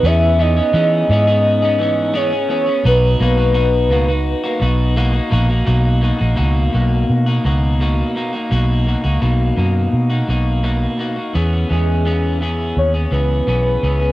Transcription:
<<
  \new Staff \with { instrumentName = "Soft synth lead" } { \time 4/4 \key b \major \tempo 4 = 85 e''8 dis''4 dis''4. cis''8 cis''8 | b'2. r4 | r1 | r1 |
r8 gis'4 r8 cis''8 b'4. | }
  \new Staff \with { instrumentName = "Clean electric guitar" } { \time 4/4 \key b \major <e b cis' gis'>8 <e b cis' gis'>16 <b cis' gis'>16 <e b cis' gis'>8 <e b cis' gis'>16 <b cis' gis'>8 <b cis' gis'>16 <e b cis' gis'>8 <e b cis' gis'>16 <b cis' gis'>16 <e b cis' gis'>16 <b cis' gis'>16 | <b, dis' fis'>8 <b, ais dis' fis'>16 <ais dis' fis'>16 <b, dis' fis'>8 <b, ais dis' fis'>16 <dis' fis'>8 <ais dis' fis'>16 <b, dis' fis'>8 <b, ais dis' fis'>16 <ais dis' fis'>16 <b, ais dis' fis'>16 <ais dis' fis'>16 | <b, ais dis' fis'>8 <b, ais dis' fis'>16 <ais dis' fis'>16 <b, ais dis' fis'>8 <b, ais dis' fis'>8. <ais dis' fis'>16 <b, ais dis' fis'>8 <b, ais dis' fis'>8 <b, ais dis' fis'>16 <ais dis' fis'>16 | <b, ais dis' fis'>8 <b, ais dis' fis'>16 <ais dis' fis'>16 <b, ais dis' fis'>8 <b, ais dis' fis'>8. <ais dis' fis'>16 <b, ais dis' fis'>8 <b, ais dis' fis'>8 <b, ais dis' fis'>16 <ais dis' fis'>16 |
<e b cis' gis'>8 <e b cis' gis'>8 <e b cis' gis'>8 <e b cis' gis'>8. <b cis' gis'>16 <e b cis' gis'>8 <e b cis' gis'>8 <e b cis' gis'>16 <b cis' gis'>16 | }
  \new Staff \with { instrumentName = "Fingered electric bass" } { \clef bass \time 4/4 \key b \major e,4 e8 gis,2 r8 | b,,8 b,,4 cis,8. r16 b,,4 ais,,8 | b,,8. ais,,16 cis,8 b,,8 b,8 cis,4 r8 | b,,8. cis,16 b,,8 fis,8 b,8 b,,4 r8 |
e,8 e,4. dis,8 cis,8 b,,8 cis,8 | }
>>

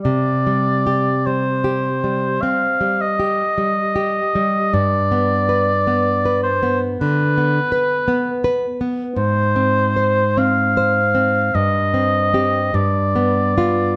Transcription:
<<
  \new Staff \with { instrumentName = "Oboe" } { \time 4/4 \key c \minor \tempo 4 = 52 d''4 c''4 f''8 ees''4. | d''4. c''8 b'4. r8 | c''4 f''4 ees''4 d''4 | }
  \new Staff \with { instrumentName = "Nylon-string guitar" } { \time 4/4 \key c \minor \tuplet 3/2 { c8 g8 g'8 g8 g'8 g8 c'8 g8 g'8 g8 g'8 g8 } | \tuplet 3/2 { g,8 b8 b'8 b8 b'8 b8 d8 b8 b'8 b8 b'8 b8 } | \tuplet 3/2 { aes,8 c'8 c''8 c'8 c''8 c'8 g,8 c'8 <c' g'>8 g,8 b8 <b f'>8 } | }
>>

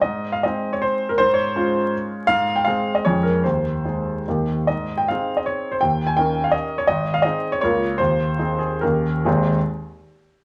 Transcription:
\new Staff \with { instrumentName = "Grand piano" } { \time 3/4 \key aes \major \tempo 4 = 153 << { ees''8. f''16 ees''8. des''16 c''8. bes'16 | c''8 des''2~ des''8 | f''8. g''16 f''8. ees''16 des''8 bes'8 | c''2 r4 |
ees''8. g''16 f''8. ees''16 des''8. c''16 | g''8. aes''16 g''8. f''16 ees''8. des''16 | ees''8. f''16 ees''8. des''16 des''4 | c''4. aes'8 bes'4 |
<aes,, ees, aes c' ees' aes'>8 r2 r8 | } \\ { aes,4 <aes c' ees'>2 | aes,4 <aes des' f'>2 | aes,4 <aes c' aes'>4 <f, aes des' aes'>4 | ees,4 <aes ees' aes'>4 <ees, bes ees' g'>4 |
aes,4 <c' ees' aes'>2 | ees,4 <des' ees' bes'>2 | aes,,4 <c' ees' aes'>4 <des, bes f' bes'>4 | ees,4 <c' ees' aes'>4 <ees, des' ees' g'>4 |
r2. | } >> }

